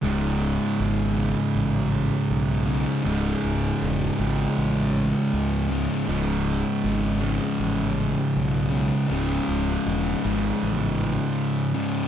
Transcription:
0.02 0.57 C#1 medium
0.02 2.70 C#2 medium
0.02 2.66 G#2 medium
0.02 2.65 C#3 medium
0.79 1.33 G#1 medium
1.15 3.03 C#2 medium
1.15 3.03 G#2 medium
1.15 3.06 C#3 medium
1.55 2.09 A1 medium
2.30 2.84 B1 medium
2.66 3.04 G#2 medium
2.66 3.07 C#3 medium
2.70 3.03 C#2 medium
3.03 3.32 C#1 medium
3.03 5.71 C#2 medium
3.03 5.68 G#2 medium
3.07 5.67 C#3 medium
3.44 3.71 C#1 medium
3.81 4.08 E1 medium
4.17 4.46 G#1 medium
4.17 6.05 C#2 medium
4.17 6.05 G#2 medium
4.17 6.09 C#3 medium
4.57 5.11 A1 medium
5.33 5.87 C#2 medium
5.68 6.06 G#2 medium
5.68 6.08 C#3 medium
5.72 6.04 C#2 medium
6.05 6.62 C#1 loud
6.05 8.74 C#2 medium
6.05 8.70 G#2 loud
6.05 8.70 C#3 loud
6.84 7.38 G#1 medium
7.19 9.08 G#2 medium
7.19 9.12 C#3 medium
7.23 9.09 C#2 medium
7.59 8.13 A1 medium
8.36 8.89 B1 medium
8.70 9.07 C#2 medium
8.70 9.08 G#2 medium
8.70 9.11 C#3 medium
9.08 9.37 C#1 medium
9.08 11.72 C#2 medium
9.08 11.73 G#2 medium
9.08 11.73 C#3 medium
9.48 9.75 C#1 medium
9.86 10.13 E1 medium
10.24 10.51 G#1 medium
10.24 12.08 C#2 medium
10.24 12.08 G#2 medium
10.24 12.08 C#3 medium
10.62 11.16 A1 medium
11.74 12.08 C#2 medium
11.74 12.08 G#2 medium
11.74 12.08 C#3 medium

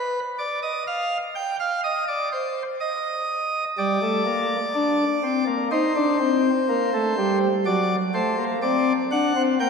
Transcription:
0.00 0.20 B4 medium
0.39 0.60 D5 medium
0.63 0.84 D#5 medium
0.87 1.17 F5 medium
1.35 1.56 G5 medium
1.60 1.81 F5 medium
1.84 2.05 D#5 medium
2.08 2.29 D5 medium
2.33 2.63 C5 medium
2.81 3.64 D#5 medium
3.78 3.99 G3 medium
3.78 5.44 D5 medium
4.02 4.23 A3 medium
4.26 4.56 A#3 medium
4.75 5.05 D4 medium
5.23 5.44 C4 medium
5.47 5.68 A#3 medium
5.71 5.92 D#4 medium
5.71 7.38 C5 medium
5.96 6.17 D4 medium
6.20 6.50 C4 medium
6.69 6.90 A#3 medium
6.94 7.14 A3 medium
7.18 7.48 G3 medium
7.66 7.96 F#3 medium
7.66 7.96 D5 medium
8.14 8.35 A3 medium
8.14 8.44 C5 medium
8.38 8.59 A#3 medium
8.62 8.93 C4 medium
8.62 8.93 D5 medium
9.12 9.33 D4 medium
9.12 9.42 F#5 medium
9.36 9.57 C4 medium
9.60 9.70 A#3 medium
9.60 9.70 G5 medium

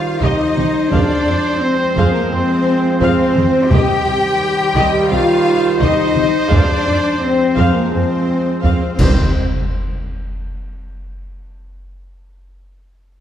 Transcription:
0.00 0.87 D#3 medium
0.00 0.87 G3 medium
0.00 0.21 F4 loud
0.00 3.68 C5 medium
0.00 0.20 F5 loud
0.00 0.21 F5 medium
0.00 impact medium
0.20 0.29 C2 loud
0.20 0.91 D#4 loud
0.20 0.54 G4 medium
0.20 0.91 D#5 loud
0.20 0.54 D#5 loud
0.20 0.92 D#5 loud
0.20 taiko medium
0.56 0.65 C2 medium
0.56 0.64 C4 medium
0.56 0.65 G4 medium
0.56 taiko mid medium
0.91 1.00 F2 loud
0.91 3.68 F3 medium
0.91 3.68 G#3 medium
0.91 1.60 D4 loud
0.91 1.61 D4 loud
0.91 1.24 G#4 medium
0.91 1.61 D5 loud
0.91 1.60 D5 loud
0.91 1.24 F5 medium
0.91 taiko loud
1.26 1.34 F2 medium
1.26 1.34 C4 medium
1.26 1.34 G#4 medium
1.60 2.13 C4 medium
1.60 2.12 C4 loud
1.60 2.13 C5 loud
1.60 2.14 C5 loud
1.96 2.05 F2 loud
1.96 2.29 G#4 loud
1.96 2.29 F5 loud
1.96 taiko medium
2.12 2.30 A#3 loud
2.12 2.31 A#3 loud
2.12 2.30 A#4 medium
2.30 2.39 F2 medium
2.30 2.99 C4 loud
2.30 3.00 C4 loud
2.30 2.40 C4 medium
2.30 2.40 G#4 medium
2.30 2.99 C5 loud
2.30 3.00 C5 loud
3.00 3.09 F2 loud
3.00 3.70 C4 loud
3.00 3.34 G#4 medium
3.00 3.70 C5 loud
3.00 3.34 F5 loud
3.00 taiko medium
3.36 3.44 F2 medium
3.36 3.45 C4 medium
3.36 3.45 G#4 medium
3.36 taiko mid medium
3.71 3.79 C2 loud
3.71 6.35 D#3 loud
3.71 6.35 G3 loud
3.71 5.11 G4 loud
3.71 5.09 G4 loud
3.71 4.05 G4 loud
3.71 8.83 C5 loud
3.71 4.04 D#5 loud
3.71 5.11 G5 loud
3.71 5.08 G5 loud
3.71 taiko loud
4.07 4.15 C2 medium
4.07 4.16 C4 medium
4.07 4.16 G4 medium
4.76 4.84 C2 loud
4.76 5.09 G4 loud
4.76 5.09 D#5 loud
4.76 taiko medium
5.10 5.19 C2 medium
5.10 5.19 C4 medium
5.10 5.80 F4 loud
5.10 5.82 F4 loud
5.10 5.19 G4 medium
5.10 5.81 F5 loud
5.80 5.89 C2 loud
5.80 6.50 D#4 loud
5.80 6.35 D#4 loud
5.80 6.14 G4 medium
5.80 6.13 D#5 loud
5.80 6.50 D#5 loud
5.80 taiko medium
6.15 6.24 C2 medium
6.15 6.23 C4 medium
6.15 6.24 G4 medium
6.15 taiko mid medium
6.50 6.59 F2 loud
6.50 8.96 F3 loud
6.50 8.96 G#3 loud
6.50 7.21 D4 loud
6.50 6.84 G#4 loud
6.50 7.21 D5 loud
6.50 6.84 F5 loud
6.50 taiko loud
6.85 6.94 F2 medium
6.85 6.93 C4 medium
6.85 6.93 G#4 medium
7.20 7.73 C4 loud
7.20 7.75 C4 loud
7.20 7.75 C5 loud
7.55 7.65 F2 loud
7.55 7.89 G#4 loud
7.55 7.89 F5 loud
7.55 taiko medium
7.73 7.92 A#3 medium
7.73 7.92 A#3 loud
7.73 7.92 A#4 medium
7.90 8.01 F2 medium
7.90 8.61 C4 loud
7.90 8.00 C4 medium
7.90 8.62 C4 medium
7.90 8.00 G#4 medium
7.90 8.62 C5 loud
7.90 8.61 C5 loud
8.62 8.71 F2 loud
8.62 8.96 C4 medium
8.62 8.98 C4 medium
8.62 8.96 G#4 medium
8.62 8.96 C5 medium
8.62 8.99 C5 medium
8.62 8.96 F5 medium
8.62 taiko medium
8.98 9.39 C2 loud
8.98 9.32 C3 loud
8.98 9.31 D#3 medium
8.98 9.31 G3 medium
8.98 9.30 C4 loud
8.98 9.39 C4 medium
8.98 9.38 G4 medium
8.98 9.38 C5 medium
8.98 9.31 C5 medium
8.98 9.39 C5 medium
8.98 9.38 D#5 medium
8.98 concert bass drum medium
8.98 taiko loud
8.98 crash medium
8.98 impact medium

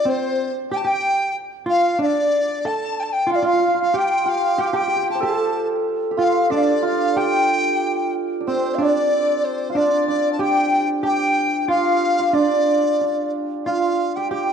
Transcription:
0.00 0.35 F4 medium
0.00 0.29 G4 medium
0.00 0.11 D5 medium
0.00 0.09 D5 medium
0.05 0.50 C4 medium
0.05 0.53 C5 medium
0.10 0.56 C5 medium
0.71 0.83 G4 medium
0.71 0.83 G5 medium
0.71 0.78 G5 loud
0.76 0.88 A5 medium
0.85 1.32 G4 medium
0.85 1.32 G5 medium
0.85 1.36 G5 medium
1.66 1.96 F4 medium
1.66 2.03 F5 medium
1.66 1.98 F5 medium
1.99 2.66 D4 medium
1.99 2.68 D5 medium
1.99 2.07 F5 medium
2.06 2.67 D5 medium
2.65 3.26 A4 medium
2.65 3.14 A5 medium
2.65 3.01 A5 medium
3.00 3.04 G5 medium
3.00 3.15 A5 medium
3.12 3.33 G5 medium
3.12 3.31 G5 medium
3.27 3.41 F4 medium
3.27 3.44 F4 medium
3.31 3.47 D5 medium
3.31 3.44 F5 medium
3.31 3.36 F5 medium
3.43 3.94 F4 medium
3.43 3.52 F4 medium
3.43 3.79 F5 medium
3.43 3.77 F5 medium
3.53 3.59 F4 soft
3.59 3.68 F4 soft
3.68 3.74 F4 soft
3.74 3.82 F4 medium
3.79 4.25 F4 soft
3.79 3.96 F5 medium
3.79 3.99 F5 medium
3.94 4.57 G4 medium
3.94 4.57 G5 medium
3.94 4.30 G5 medium
4.26 6.17 F4 medium
4.26 4.62 F5 medium
4.58 4.73 G4 medium
4.58 4.72 G4 medium
4.58 4.71 G5 medium
4.58 4.67 G5 medium
4.66 4.77 F5 medium
4.73 4.81 G4 medium
4.73 5.23 G4 medium
4.73 5.08 G5 medium
4.73 5.24 G5 medium
4.73 4.77 A5 medium
4.81 4.87 G4 soft
4.87 4.95 G4 medium
4.96 5.02 G4 medium
5.03 5.09 G4 medium
5.10 6.11 G4 medium
5.10 5.23 A5 medium
5.15 7.79 C5 medium
5.20 8.13 A4 medium
5.20 5.67 A4 medium
5.20 5.70 A5 medium
5.20 5.68 A5 medium
6.11 7.16 G4 medium
6.17 6.82 F4 medium
6.17 6.52 F4 medium
6.17 6.48 F5 medium
6.17 6.25 G5 medium
6.24 6.52 F5 medium
6.50 8.40 D4 medium
6.50 7.18 D4 medium
6.50 6.86 D5 medium
6.50 6.59 D5 medium
6.57 6.64 F5 medium
6.63 7.15 D5 medium
6.82 9.69 F4 medium
6.82 7.18 F5 medium
7.16 10.30 G4 medium
7.16 8.11 G4 medium
7.16 8.15 G5 loud
7.16 8.10 G5 medium
7.16 7.21 A5 medium
8.41 8.80 D4 soft
8.47 12.47 C4 medium
8.47 8.78 C4 medium
8.47 8.82 C5 medium
8.47 8.76 C5 medium
8.75 9.74 D4 medium
8.75 8.84 F5 medium
8.80 9.75 D4 medium
8.80 9.70 D5 medium
8.80 9.46 D5 medium
9.44 9.78 C5 medium
9.70 11.70 F4 medium
9.70 9.79 F5 medium
9.75 10.42 D4 medium
9.75 10.08 D4 medium
9.75 10.07 D5 medium
9.75 10.39 D5 medium
10.08 12.34 D4 medium
10.08 10.31 D5 medium
10.32 10.42 A5 medium
10.39 10.85 G4 medium
10.39 11.03 G4 medium
10.39 10.85 G5 medium
10.39 10.89 G5 medium
11.03 11.68 G4 medium
11.03 14.16 G4 medium
11.03 11.66 G5 medium
11.03 11.09 A5 medium
11.08 11.63 G5 medium
11.63 11.71 G5 medium
11.68 12.36 F4 medium
11.68 12.19 F4 medium
11.68 12.34 F5 medium
11.68 12.35 F5 medium
12.19 13.67 F4 medium
12.33 13.28 D4 medium
12.33 13.01 D4 medium
12.33 13.32 D5 medium
12.33 13.28 D5 medium
13.01 14.53 D4 medium
13.65 14.31 F4 medium
13.65 14.53 F4 medium
13.65 14.17 F5 medium
14.16 14.31 G4 medium
14.16 14.31 G5 medium
14.31 14.53 G4 medium
14.31 14.53 G5 medium

